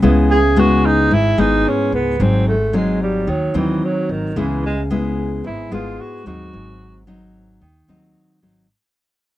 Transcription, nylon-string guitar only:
0.02 1.08 C#3 soft
0.02 0.37 G#3 soft
0.02 0.38 B3 soft
0.02 0.38 E4 soft
0.56 1.11 G#3 soft
0.56 1.11 B3 soft
0.56 1.11 E4 medium
1.11 2.17 G#2 soft
1.38 2.15 G#3 medium
1.38 2.15 B3 medium
1.38 2.15 E4 medium
2.20 3.25 G#2 soft
2.20 2.55 F#3 medium
2.20 2.55 C4 soft
2.20 2.55 D#4 soft
2.73 3.27 F#3 soft
2.73 3.28 C4 soft
2.73 3.28 D#4 medium
3.27 4.33 D#3 soft
3.54 4.32 F#3 medium
3.54 4.32 C4 medium
3.54 4.32 D#4 medium
4.36 5.42 C#3 soft
4.36 4.71 G#3 soft
4.36 4.71 B3 soft
4.36 4.72 E4 soft
4.90 5.68 G#3 medium
4.90 5.68 B3 soft
4.90 5.68 E4 medium
5.44 6.50 G#2 medium
5.71 6.22 G#3 medium
5.71 6.22 B3 medium
5.71 6.22 E4 medium
6.26 7.03 F#3 medium
6.26 7.03 C4 medium
6.26 7.04 D#4 medium
6.53 7.59 G#2 soft
7.07 7.61 F#3 medium
7.07 7.61 C4 soft
7.07 7.62 D#4 medium
7.62 8.67 D#3 soft
7.88 8.38 F#3 soft
7.88 8.39 C4 medium
7.88 8.39 D#4 medium
8.42 8.66 F#3 medium
8.42 8.66 C4 medium
8.42 8.66 D#4 soft

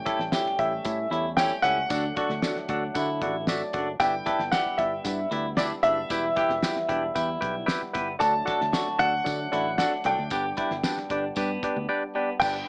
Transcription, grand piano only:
0.00 0.60 G5 loud
0.59 1.08 E5 loud
1.37 1.64 G5 loud
1.62 3.17 F#5 loud
4.00 4.54 G5 loud
4.52 4.79 F#5 loud
4.78 5.27 E5 medium
5.57 5.63 D5 medium
5.83 7.37 E5 loud
8.20 9.02 A5 loud
8.99 9.74 F#5 loud
9.78 10.03 F#5 medium
10.06 11.85 G5 medium
12.40 12.68 G5 loud

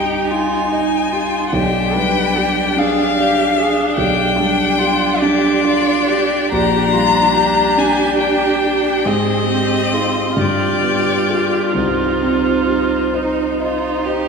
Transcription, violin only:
0.00 0.30 G5 medium
0.31 1.51 G#5 medium
1.53 2.79 G5 medium
2.78 3.97 F5 medium
3.97 5.22 G5 medium
5.21 6.52 D5 medium
6.52 7.80 A#5 medium
7.78 8.19 G#5 medium
8.20 9.08 G5 medium
9.06 10.42 D#5 medium
10.41 11.78 D5 medium
11.76 14.28 C5 soft

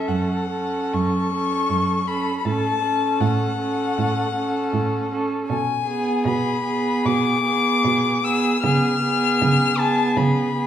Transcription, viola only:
0.00 0.50 C#4 soft
0.52 1.32 C#4 soft
1.34 2.07 C#4 soft
2.08 2.44 C#4 soft
2.46 2.82 C#4 soft
2.82 3.58 C#4 soft
3.59 4.34 C#4 soft
4.36 5.10 C#4 soft
5.12 5.49 C#4 soft
5.87 6.63 B3 soft
6.66 7.44 B3 soft
7.45 8.22 B3 soft
8.24 8.62 B3 soft
8.63 9.02 B3 soft
9.02 9.77 B3 soft
9.78 10.56 B3 soft
10.57 10.67 B3 soft

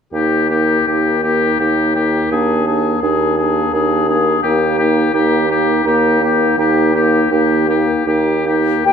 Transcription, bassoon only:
0.12 0.78 D#2 soft
0.87 1.51 D#2 soft
1.60 2.23 D#2 soft
2.31 2.94 D#2 soft
3.02 3.65 D#2 soft
3.73 4.36 D#2 soft
4.45 5.05 D#2 soft
5.14 5.77 D#2 soft
5.86 6.50 D#2 soft
6.58 7.22 D#2 soft
7.31 7.90 D#2 soft
8.07 8.76 D#2 soft
8.85 8.93 D#2 soft

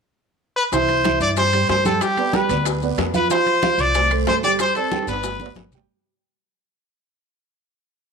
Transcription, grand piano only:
0.73 0.99 E3 medium
0.73 0.99 E4 medium
0.73 1.00 E5 medium
1.05 1.31 E3 medium
1.05 1.32 E4 medium
1.05 1.32 E5 medium
1.37 1.50 G3 medium
1.37 1.50 G4 medium
1.37 1.51 C5 medium
1.53 1.80 G3 medium
1.53 1.80 G4 medium
1.53 1.80 C5 medium
1.86 2.12 G3 medium
1.86 2.12 G4 medium
1.86 2.12 G5 medium
2.18 2.31 B3 medium
2.18 2.31 B4 medium
2.18 2.31 D5 medium
2.34 2.47 G3 medium
2.34 2.47 G4 medium
2.34 2.47 G5 medium
2.50 2.76 B3 medium
2.50 2.76 B4 medium
2.50 2.77 D5 medium
2.83 3.09 B3 medium
2.83 3.09 B4 medium
2.83 3.09 D5 medium
3.14 3.27 F3 medium
3.14 3.27 F4 medium
3.14 3.28 F5 medium
3.30 3.57 F3 medium
3.30 3.57 F4 medium
3.30 3.57 F5 medium
3.63 3.89 F3 medium
3.63 3.89 F4 medium
3.63 3.90 F5 medium
3.95 4.08 A3 medium
3.95 4.08 A4 medium
3.95 4.08 C5 medium
4.11 4.37 A3 medium
4.11 4.38 A4 medium
4.11 4.38 C5 medium
4.43 4.70 G3 medium
4.43 4.70 G4 medium
4.43 4.70 G5 medium
4.76 4.89 C4 medium
4.76 4.89 C5 medium
4.76 4.89 D5 medium
4.92 5.05 G3 medium
4.92 5.05 G4 medium
4.92 5.06 G5 medium
5.08 5.34 B3 medium
5.08 5.34 B4 medium
5.08 5.35 D5 medium
5.41 5.67 B3 medium
5.41 5.67 B4 medium
5.41 5.67 D5 medium
5.74 5.87 G3 medium
5.74 5.87 G4 medium
5.74 5.87 G5 medium

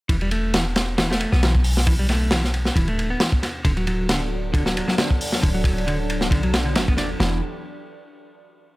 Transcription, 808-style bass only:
0.09 1.25 E1 loud
1.33 2.70 B1 loud
2.76 3.14 D1 medium
3.65 4.81 D1 loud
5.43 6.33 D1 loud
6.31 6.77 B1 loud
6.76 7.14 F#1 medium
7.20 7.41 E1 loud

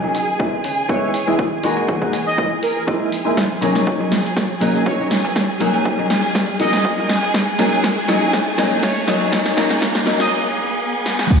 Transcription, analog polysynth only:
0.89 1.10 C#5 medium
2.26 2.47 D#5 medium
2.63 2.71 A#4 medium
2.76 2.83 A#4 medium
4.86 5.07 C#5 medium
6.60 7.09 D#5 medium
8.83 9.04 C#5 medium
10.20 10.32 D#5 medium

